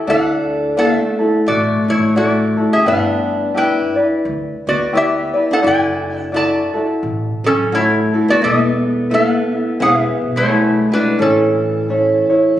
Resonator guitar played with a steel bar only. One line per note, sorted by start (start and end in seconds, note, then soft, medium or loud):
0.10 0.75 A4 medium
0.10 0.78 F#5 medium
0.79 1.44 A4 medium
0.79 1.47 E5 medium
1.48 1.86 F#4 medium
1.48 1.89 D5 medium
1.90 2.15 E4 medium
1.90 2.17 C#5 medium
2.17 2.69 F#4 medium
2.17 2.73 D5 medium
2.73 2.86 G#4 medium
2.73 2.87 E5 medium
2.88 3.52 B4 medium
2.88 3.52 F#5 medium
3.57 3.95 B4 medium
3.57 3.95 G5 medium
4.69 4.94 F#4 medium
4.69 4.96 D5 medium
4.97 5.47 G4 medium
4.97 5.53 E5 medium
5.53 5.58 A4 medium
5.53 5.58 F#5 medium
5.67 6.31 D5 medium
5.67 6.20 G#5 medium
6.20 6.36 F#5 medium
6.36 6.73 D5 medium
6.36 6.74 A5 medium
7.46 7.72 C#4 medium
7.46 7.74 A4 medium
7.75 8.25 E4 medium
7.75 8.30 C#5 medium
8.30 8.36 F#4 medium
8.30 8.35 D5 medium
8.44 9.08 A4 medium
8.44 9.14 E5 medium
9.14 9.78 A4 medium
9.14 9.82 F#5 loud
9.82 10.33 G#4 medium
9.82 9.99 F5 loud
9.99 10.38 E5 loud
10.37 10.88 E4 medium
10.37 10.93 C#5 medium
10.93 11.18 D4 medium
10.93 11.21 B4 medium
11.22 12.60 C#4 medium
11.22 12.60 A4 medium